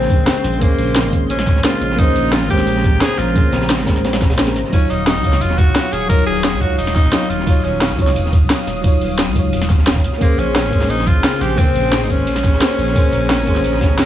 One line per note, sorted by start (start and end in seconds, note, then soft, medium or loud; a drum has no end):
0.00 0.20 A#1 loud
0.00 0.59 C#3 medium
0.00 4.69 C#3 medium
0.00 4.69 G#3 medium
0.00 0.58 A#3 loud
0.00 0.27 C4 loud
0.00 0.60 C#4 medium
0.00 0.63 G#4 medium
0.00 0.65 C5 loud
0.00 1.95 C6 medium
0.00 snare soft
0.10 kick loud
0.10 closed hi-hat medium
0.18 0.26 G#1 medium
0.27 0.63 C4 medium
0.27 snare loud
0.27 closed hi-hat medium
0.36 closed hi-hat soft
0.44 0.69 A#1 loud
0.44 snare soft
0.44 closed hi-hat medium
0.53 closed hi-hat soft
0.58 1.09 A#3 medium
0.58 1.13 A#3 loud
0.58 1.10 C#4 medium
0.58 kick loud
0.58 closed hi-hat medium
0.58 closed hi-hat loud
0.63 1.11 G#4 medium
0.63 1.12 C5 loud
0.71 closed hi-hat soft
0.78 1.06 A#1 loud
0.78 closed hi-hat medium
0.78 open hi-hat medium
0.96 snare loud
0.96 closed hi-hat medium
1.04 1.32 G#1 loud
1.10 1.61 A#3 medium
1.10 1.62 C#4 medium
1.10 kick medium
1.10 closed hi-hat medium
1.14 1.63 G#4 medium
1.14 1.64 C5 medium
1.29 1.57 A#1 loud
1.29 1.66 C#4 loud
1.29 closed hi-hat medium
1.39 snare medium
1.47 kick loud
1.47 snare soft
1.47 closed hi-hat medium
1.55 1.63 G#1 medium
1.55 snare soft
1.63 1.95 A#3 medium
1.63 1.96 C#4 medium
1.63 2.00 F4 loud
1.63 1.97 G#4 medium
1.63 1.97 C5 medium
1.63 snare loud
1.63 closed hi-hat medium
1.73 snare soft
1.81 2.06 A#1 loud
1.81 closed hi-hat medium
1.90 snare medium
1.96 2.46 A#3 loud
1.96 2.47 C#4 medium
1.96 2.34 D#4 loud
1.96 2.48 G#4 medium
1.96 4.70 A#5 medium
1.96 kick loud
1.96 closed hi-hat loud
1.96 closed hi-hat medium
2.02 2.50 C5 loud
2.15 2.43 A#1 loud
2.15 closed hi-hat medium
2.32 2.49 F4 loud
2.32 snare loud
2.32 closed hi-hat medium
2.32 closed hi-hat loud
2.41 2.68 G#1 loud
2.47 3.31 A#3 medium
2.47 3.33 C#4 medium
2.47 3.03 G4 loud
2.47 kick medium
2.47 closed hi-hat medium
2.51 3.34 G#3 medium
2.51 3.35 C5 loud
2.59 snare soft
2.67 2.94 A#1 loud
2.67 closed hi-hat loud
2.67 closed hi-hat medium
2.76 snare soft
2.84 kick loud
2.84 closed hi-hat medium
2.93 3.00 G#1 medium
3.01 3.20 G#4 loud
3.01 snare loud
3.01 closed hi-hat loud
3.01 closed hi-hat medium
3.10 closed hi-hat soft
3.18 3.43 A#1 loud
3.18 3.70 F4 loud
3.18 snare soft
3.18 closed hi-hat medium
3.27 closed hi-hat soft
3.32 3.83 A#3 medium
3.32 3.84 C#4 medium
3.32 kick loud
3.32 closed hi-hat loud
3.32 closed hi-hat medium
3.37 3.86 G#4 medium
3.37 3.87 C5 loud
3.44 closed hi-hat soft
3.52 3.80 A#1 loud
3.52 snare loud
3.52 closed hi-hat medium
3.62 snare loud
3.62 closed hi-hat medium
3.69 snare loud
3.69 closed hi-hat medium
3.69 closed hi-hat loud
3.78 4.06 G#1 loud
3.78 snare loud
3.78 closed hi-hat medium
3.84 4.35 A#3 medium
3.84 4.36 C#4 medium
3.84 kick medium
3.84 snare loud
3.84 closed hi-hat medium
3.88 4.37 G#4 medium
3.88 4.38 C5 medium
3.96 snare soft
4.04 4.29 A#1 loud
4.04 snare loud
4.04 closed hi-hat loud
4.04 closed hi-hat medium
4.13 snare loud
4.13 snare medium
4.13 closed hi-hat medium
4.21 kick loud
4.21 snare loud
4.21 snare soft
4.21 closed hi-hat medium
4.30 4.57 A#1 loud
4.30 snare loud
4.30 closed hi-hat medium
4.37 4.70 A#3 medium
4.37 4.70 C#4 medium
4.37 4.71 G#4 medium
4.37 4.72 C5 medium
4.37 snare loud
4.37 closed hi-hat loud
4.37 closed hi-hat medium
4.47 snare loud
4.47 closed hi-hat medium
4.56 4.63 G#1 medium
4.56 snare soft
4.56 closed hi-hat medium
4.64 snare soft
4.70 5.20 F#3 loud
4.70 10.17 F#3 medium
4.70 4.91 C#4 loud
4.70 5.22 D#4 medium
4.70 10.17 F5 medium
4.70 7.44 C#6 medium
4.70 kick loud
4.70 closed hi-hat medium
4.70 closed hi-hat loud
4.70 ride medium
4.74 5.23 F4 medium
4.74 5.24 C#5 loud
4.90 5.17 D#1 loud
4.90 5.06 D#4 medium
4.90 closed hi-hat medium
5.07 5.42 D#4 loud
5.07 snare loud
5.07 closed hi-hat medium
5.07 closed hi-hat loud
5.07 ride medium
5.16 5.43 C#2 loud
5.21 6.05 F#3 medium
5.21 6.07 D#4 medium
5.21 kick medium
5.21 closed hi-hat medium
5.25 6.09 C#5 loud
5.25 6.08 F5 medium
5.33 snare soft
5.41 5.68 D#1 loud
5.41 5.59 F4 loud
5.41 closed hi-hat medium
5.41 closed hi-hat loud
5.41 ride medium
5.50 snare medium
5.58 5.94 F#4 loud
5.58 kick loud
5.58 closed hi-hat medium
5.67 5.75 C#2 medium
5.75 snare loud
5.75 closed hi-hat medium
5.75 closed hi-hat loud
5.75 ride medium
5.84 closed hi-hat soft
5.92 6.17 D#1 loud
5.92 6.09 G#4 loud
5.92 snare soft
5.92 closed hi-hat medium
6.01 closed hi-hat soft
6.07 6.57 F#3 medium
6.07 6.59 D#4 medium
6.07 6.25 A#4 loud
6.07 kick loud
6.07 closed hi-hat loud
6.07 closed hi-hat medium
6.07 ride medium
6.11 6.60 F4 medium
6.11 6.61 C#5 loud
6.19 closed hi-hat soft
6.26 6.54 D#1 loud
6.26 6.62 G#4 loud
6.26 closed hi-hat medium
6.26 open hi-hat medium
6.44 snare loud
6.44 closed hi-hat medium
6.44 closed hi-hat loud
6.44 ride medium
6.53 6.80 C#2 loud
6.58 7.10 F#3 medium
6.58 7.11 D#4 medium
6.58 6.77 F#4 loud
6.58 kick medium
6.58 closed hi-hat medium
6.62 7.12 F4 medium
6.62 7.13 C#5 medium
6.62 closed hi-hat medium
6.78 7.06 D#1 loud
6.78 6.94 D#4 loud
6.78 closed hi-hat medium
6.78 ride medium
6.87 snare medium
6.95 7.31 D#4 loud
6.95 kick loud
6.95 snare soft
6.95 closed hi-hat medium
7.04 7.12 C#2 medium
7.04 snare soft
7.11 7.43 F#3 medium
7.11 7.45 D#4 medium
7.11 7.45 F4 medium
7.11 7.46 C#5 medium
7.11 snare loud
7.11 closed hi-hat medium
7.11 closed hi-hat loud
7.11 ride medium
7.22 snare soft
7.29 7.54 D#1 loud
7.29 7.65 F4 loud
7.29 closed hi-hat medium
7.39 snare soft
7.44 7.95 F#3 loud
7.44 7.96 D#4 medium
7.44 10.18 D#6 medium
7.44 kick loud
7.44 closed hi-hat medium
7.44 ride medium
7.48 7.97 F4 medium
7.48 7.98 C#5 loud
7.64 7.92 D#1 loud
7.64 8.15 C#4 medium
7.64 closed hi-hat medium
7.81 snare loud
7.81 closed hi-hat medium
7.81 ride medium
7.90 8.17 C#2 loud
7.96 8.80 F#3 medium
7.96 8.82 D#4 medium
7.96 kick medium
7.96 closed hi-hat medium
8.00 8.83 F4 medium
8.00 8.84 C#5 loud
8.07 snare soft
8.16 8.43 D#1 loud
8.16 closed hi-hat medium
8.16 ride medium
8.26 snare soft
8.33 kick loud
8.33 closed hi-hat medium
8.41 8.49 C#2 medium
8.50 snare loud
8.50 closed hi-hat loud
8.50 closed hi-hat medium
8.50 ride medium
8.59 closed hi-hat soft
8.67 8.91 D#1 loud
8.67 snare soft
8.67 closed hi-hat medium
8.77 closed hi-hat soft
8.81 9.32 F#3 medium
8.81 9.33 D#4 medium
8.81 kick loud
8.81 closed hi-hat medium
8.81 ride medium
8.85 9.34 F4 medium
8.85 9.35 C#5 loud
8.93 closed hi-hat soft
9.01 9.29 D#1 loud
9.01 closed hi-hat medium
9.01 open hi-hat medium
9.19 snare loud
9.19 closed hi-hat medium
9.19 ride medium
9.27 9.54 C#2 loud
9.33 9.84 F#3 medium
9.33 9.85 D#4 medium
9.33 9.86 F4 medium
9.33 kick medium
9.33 closed hi-hat medium
9.39 9.87 C#5 medium
9.53 9.77 D#1 loud
9.53 closed hi-hat medium
9.53 ride medium
9.62 snare medium
9.69 kick loud
9.69 snare soft
9.69 closed hi-hat medium
9.78 10.05 D#1 loud
9.78 snare soft
9.87 snare loud
9.87 closed hi-hat medium
9.87 ride medium
9.95 kick medium
9.95 snare soft
10.04 10.12 C#2 loud
10.04 closed hi-hat medium
10.13 snare soft
10.18 14.05 C#3 medium
10.18 10.68 A#3 loud
10.18 10.40 A#3 loud
10.18 10.70 C#4 medium
10.18 14.05 G#4 medium
10.18 10.71 G#4 medium
10.18 12.93 C6 medium
10.18 kick loud
10.18 closed hi-hat medium
10.18 ride medium
10.24 10.72 C5 loud
10.38 10.66 A#1 loud
10.38 10.55 C#4 loud
10.38 closed hi-hat medium
10.56 10.91 C#4 loud
10.56 snare loud
10.56 closed hi-hat medium
10.56 closed hi-hat loud
10.56 ride medium
10.64 10.91 G#1 loud
10.70 11.54 A#3 medium
10.70 11.56 C#4 medium
10.70 kick medium
10.70 closed hi-hat medium
10.74 11.57 G#4 medium
10.74 11.58 C5 loud
10.81 snare soft
10.89 11.17 A#1 loud
10.89 11.08 D#4 loud
10.89 closed hi-hat medium
10.89 ride medium
10.99 snare soft
11.07 11.43 F4 loud
11.07 kick loud
11.07 closed hi-hat medium
11.15 11.23 G#1 medium
11.24 snare loud
11.24 closed hi-hat medium
11.24 ride medium
11.33 closed hi-hat soft
11.41 11.66 A#1 loud
11.41 11.60 G4 loud
11.41 snare soft
11.41 closed hi-hat medium
11.50 closed hi-hat soft
11.55 12.07 C#3 medium
11.55 12.06 A#3 medium
11.55 12.03 C4 loud
11.55 kick loud
11.55 closed hi-hat medium
11.55 closed hi-hat loud
11.55 ride medium
11.59 12.08 G#4 medium
11.59 12.09 C5 loud
11.67 closed hi-hat soft
11.75 12.03 A#1 loud
11.75 closed hi-hat medium
11.75 open hi-hat medium
11.92 snare loud
11.92 closed hi-hat loud
11.92 closed hi-hat medium
11.92 ride medium
12.01 12.28 G#1 loud
12.01 12.11 D#4 medium
12.07 12.58 A#3 medium
12.07 12.59 C#4 medium
12.07 14.05 C#4 loud
12.07 kick medium
12.07 closed hi-hat medium
12.11 12.60 G#4 medium
12.11 12.61 C5 medium
12.27 12.54 A#1 loud
12.27 closed hi-hat medium
12.27 closed hi-hat loud
12.27 ride medium
12.36 snare medium
12.44 kick loud
12.44 snare soft
12.44 closed hi-hat medium
12.53 12.60 G#1 medium
12.53 snare soft
12.60 12.91 A#3 medium
12.60 12.93 C#4 medium
12.60 12.94 G#4 medium
12.60 12.94 C5 medium
12.60 snare loud
12.60 closed hi-hat loud
12.60 ride medium
12.70 snare soft
12.78 13.03 A#1 loud
12.78 closed hi-hat medium
12.87 snare soft
12.93 13.43 A#3 loud
12.93 13.45 C#4 medium
12.93 14.05 A#5 medium
12.93 kick loud
12.93 closed hi-hat medium
12.93 closed hi-hat loud
12.93 ride medium
12.97 13.46 G#4 medium
12.97 13.47 C5 loud
13.13 13.40 A#1 loud
13.13 closed hi-hat medium
13.29 snare loud
13.29 closed hi-hat loud
13.29 closed hi-hat medium
13.29 ride medium
13.39 13.66 G#1 loud
13.44 14.05 A#3 medium
13.44 14.05 C#4 medium
13.44 kick medium
13.44 closed hi-hat medium
13.48 14.05 G#4 medium
13.48 14.05 C5 loud
13.56 snare soft
13.64 13.91 A#1 loud
13.64 closed hi-hat medium
13.64 closed hi-hat loud
13.64 ride medium
13.73 snare soft
13.81 kick loud
13.81 snare loud
13.81 closed hi-hat medium
13.90 13.98 G#1 medium
13.99 snare loud
13.99 closed hi-hat loud
13.99 ride medium